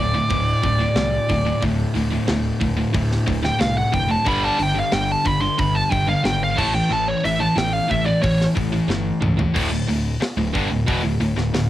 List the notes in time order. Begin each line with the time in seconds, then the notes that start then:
Already playing: D2 A2 D3 D5
0.00 D1
0.14 D2 A2
0.30 D1 D2 A2 D3, kick, open hi-hat
0.63 D1 D2 A2, kick, open hi-hat
0.80 D2 A2
0.96 C2 D2 A2, snare, open hi-hat
1.29 D1 D2 A2, kick, open hi-hat
1.46 D2 A2
1.62 D1 D2 A2 D3, kick, open hi-hat
1.95 D1 D2 A2, open hi-hat
2.12 D2 A2
2.28 D1 D2 A2, snare, open hi-hat
2.60 D1 D2 A2, kick, open hi-hat
2.77 D2 A2
2.93 D1 D2 A2, kick, open hi-hat
2.97 D3
3.12 snare
3.26 D1 D2 A2, kick, open hi-hat
3.43 D2 A2 G5, snare
3.59 C2 D2 A2 F5, snare, open hi-hat
3.78 F#5
3.92 F1 D2 A2 G5, kick, open hi-hat
4.08 D2 A2 A5
4.25 G1 G2 D3 G3 B5, kick, open hi-hat
4.45 A5
4.59 G1 G2 D3 G5, open hi-hat
4.75 G2 D3
4.80 F5
4.92 G1 G2 D3 G5, snare, open hi-hat
5.12 A5
5.25 G1 G2 D3 B5, kick, open hi-hat
5.41 G2 D3 C6
5.58 G1 G2 D3 G3 B5, kick, open hi-hat
5.75 A5
5.91 G1 G2 D3 G5, kick, open hi-hat
6.07 G2 D3 F5
6.24 G#1 G2 D3 G5, snare, open hi-hat
6.44 F5
6.57 A1 A2 E3 A3 A5, kick, crash
6.74 A2 E3 G5
6.91 A1 A2 E3 A5
7.08 C#5
7.24 A1 A2 E3 E5, open hi-hat
7.40 A2 E3 A5
7.56 A1 A2 E3 G5, snare, open hi-hat
7.73 F5
7.88 A1 A2 E3 A3 E5, kick
8.06 A2 E3 D5
8.22 A1 A2 E3 C#5, kick, open hi-hat
8.41 snare
8.55 A1 A2 E3, kick, open hi-hat
8.72 A2 E3
8.88 G1 A2 E3, snare
9.21 C#2 A2 E3, mid tom
9.39 A2 E3, floor tom
9.54 D1 D2 A2, kick, crash
9.69 D1 D2 A2
9.87 D1 D2 A2, open hi-hat
10.21 muted distorted electric guitar stroke, snare, open hi-hat
10.37 D1 D2 A2
10.54 G1 G2 D3, kick, open hi-hat
10.70 D1 D2 A2
10.87 E1 E2 B2, kick, open hi-hat
11.04 D1 D2 A2
11.20 D1 D2 A2, open hi-hat
11.36 D1 D2 A2, snare
11.54 D1 D2 A2, snare, open hi-hat